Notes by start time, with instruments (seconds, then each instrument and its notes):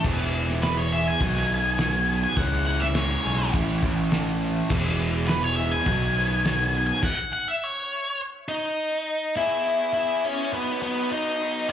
0.03 picked electric bass E1, overdriven electric guitar E3 G#3 B3, kick, crash
0.07 overdriven electric guitar E4
0.36 overdriven electric guitar E3
0.50 snare
0.62 overdriven electric guitar B3, lead electric guitar B4, snare, open hi-hat
0.77 lead electric guitar C#5
0.92 overdriven electric guitar G#4, lead electric guitar E5
1.08 lead electric guitar G#5
1.20 picked electric bass B1, overdriven electric guitar B2 D#3 F#3 B3 D#4, kick, open hi-hat
1.36 snare
1.52 overdriven electric guitar B3
1.78 overdriven electric guitar F#4, snare, open hi-hat
2.10 overdriven electric guitar B3
2.24 lead electric guitar G#5
2.36 picked electric bass C#2, overdriven electric guitar C#3 E3 G#3, lead electric guitar F#5, kick, open hi-hat
2.40 overdriven electric guitar C#4 E4
2.66 overdriven electric guitar E3, lead electric guitar F#5
2.80 lead electric guitar E5, snare
2.94 overdriven electric guitar G#3, lead electric guitar C#5, snare, open hi-hat
3.24 picked electric bass B1, overdriven electric guitar G#4
3.51 picked electric bass A1, overdriven electric guitar A2 E3 A3 C#4, kick, open hi-hat
3.56 overdriven electric guitar E4
3.82 picked electric bass A1, overdriven electric guitar A3, kick
4.11 overdriven electric guitar A4, snare, open hi-hat
4.42 overdriven electric guitar A3
4.69 picked electric bass E1, overdriven electric guitar E3 G#3 B3, kick, crash
4.73 overdriven electric guitar E4
4.99 overdriven electric guitar E3
5.28 overdriven electric guitar B3, lead electric guitar B4, snare, open hi-hat
5.43 lead electric guitar C#5
5.56 overdriven electric guitar G#4, lead electric guitar E5
5.72 lead electric guitar G#5
5.83 picked electric bass B1, overdriven electric guitar B2 D#3 F#3 B3, kick, open hi-hat
5.87 overdriven electric guitar F#3 D#4
6.16 overdriven electric guitar B3
6.45 overdriven electric guitar F#4, snare, open hi-hat
6.75 overdriven electric guitar B3
6.87 lead electric guitar G#5
7.03 lead electric guitar F#5, kick, crash
7.33 lead electric guitar F#5
7.48 lead electric guitar E5
7.64 lead electric guitar C#5
8.48 lead electric guitar D#4
9.36 overdriven electric guitar B3 E4 G#4, lead electric guitar E4
9.64 overdriven electric guitar B3 E4 G#4
9.94 overdriven electric guitar B3 E4 G#4, lead electric guitar E4
10.25 overdriven electric guitar B3 E4 G#4, lead electric guitar C#4
10.52 overdriven electric guitar F#3 B3 D#4, lead electric guitar B3
10.81 overdriven electric guitar F#3 B3 D#4, lead electric guitar B3
11.11 overdriven electric guitar F#3 B3 D#4, lead electric guitar D#4
11.42 overdriven electric guitar F#3 B3 D#4
11.69 lead electric guitar C#4